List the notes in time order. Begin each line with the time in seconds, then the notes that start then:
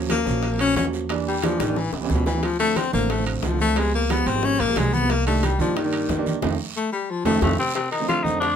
Already playing: D#2 F3 F#3 A#3 C#4
0.10 A#3, high bongo, high conga, high timbale, low timbale, short guiro
0.25 A#1 F3 F#3 A#3 C#4, high conga, short guiro
0.43 high bongo, high conga, high timbale, long guiro
0.51 F3 F#3 A#3 C4
0.59 C#4, high bongo, high conga, high timbale
0.76 E2 C#4, high bongo, low bongo, high conga, low timbale, short guiro
0.84 F3 F#3 A#3 C#4
0.93 high bongo, short guiro
1.09 E3 G3 A#3 D4, high bongo, high conga, high timbale, long guiro
1.26 G3, high bongo, high conga
1.42 E3 F3 G3 A#3 D4, high bongo, high conga, high timbale, low timbale, short guiro
1.60 A1 D#3, high bongo, high conga, high timbale, short guiro
1.67 E3 G3 A#3 D4
1.76 E3, low bongo, high conga, long guiro
1.93 C#2 G2, low bongo, high conga, high timbale
2.00 E3 G3 B3 C#4
2.05 high timbale
2.09 D2 B2, low bongo, high conga, short guiro
2.15 low timbale
2.26 E3, low bongo, high conga, low timbale, short guiro
2.34 E3 G3 B3 C#4
2.43 F3, high bongo, high conga, high timbale, long guiro
2.59 D3 F3 A3 C4, high bongo, high conga, high timbale
2.76 C4, high bongo, high conga, high timbale, low timbale, short guiro
2.92 A1 D3 F3 A3 A#3 C4, high conga, short guiro
3.10 A3, high bongo, high timbale, long guiro
3.17 D3 F3 A3 C4
3.27 C3, high bongo, high conga, high timbale
3.43 C#2 F3, high bongo, low bongo, high conga, low timbale, short guiro
3.51 D3 F3 A3 C4
3.59 A3, high bongo, high conga, short guiro
3.76 F3 G3 G#3 B3, high bongo, high timbale, long guiro
3.94 A#3, high bongo, high conga
4.10 F3 G3 G#3 B3, high bongo, high conga, high timbale, low timbale, short guiro
4.26 G#1 C4, high conga, high timbale, short guiro
4.35 F3 G3 G#3 A#3
4.43 C#4, high bongo, high conga, long guiro
4.60 A#1 A#3, high bongo, high conga, high timbale
4.67 F3 G3 G#3 A#3
4.76 C2 G#3, high bongo, low bongo, high conga, high timbale, low timbale, short guiro
4.93 B3, high conga, short guiro
5.01 F3 G3 G#3 B3
5.10 A#3, high bongo, high conga, high timbale, long guiro
5.25 D#3 G3 A3 A#3 D4, high bongo, high conga, high timbale
5.43 G3, high bongo, high conga, high timbale, low timbale, short guiro
5.59 G2 D#3 F3 G3 A#3 D4, high conga, short guiro
5.76 D#3, high bongo, high conga, high timbale, long guiro
5.84 D#3 G3 A#3 D4
5.93 high bongo, high conga, high timbale
6.09 F2, high bongo, low bongo, high conga, low timbale, short guiro
6.17 D#3 G3 A#3 D4
6.26 high bongo, high conga, short guiro
6.42 F2 D#3 F3 A3, high bongo, low conga, high timbale, long guiro
6.77 A3
6.92 G3
7.10 F3
7.25 F2 D#3 F3 A3, high bongo, low conga, high timbale, long guiro
7.42 F2 A2 D#3 F3 A3, high bongo, low conga, high timbale, long guiro
7.58 C3 C4
7.75 C3 C4, high bongo, high conga, high timbale, long guiro
7.91 D#3 D#4, high bongo, high conga, high timbale
8.00 D3 F3 A3 C4
8.08 F3 F4, high bongo, high conga, high timbale, low timbale, short guiro
8.23 F2 D3 D#3 F3 A3 C4 D#4, high bongo, high conga, short guiro
8.40 D3 D4, high bongo, high conga, high timbale, long guiro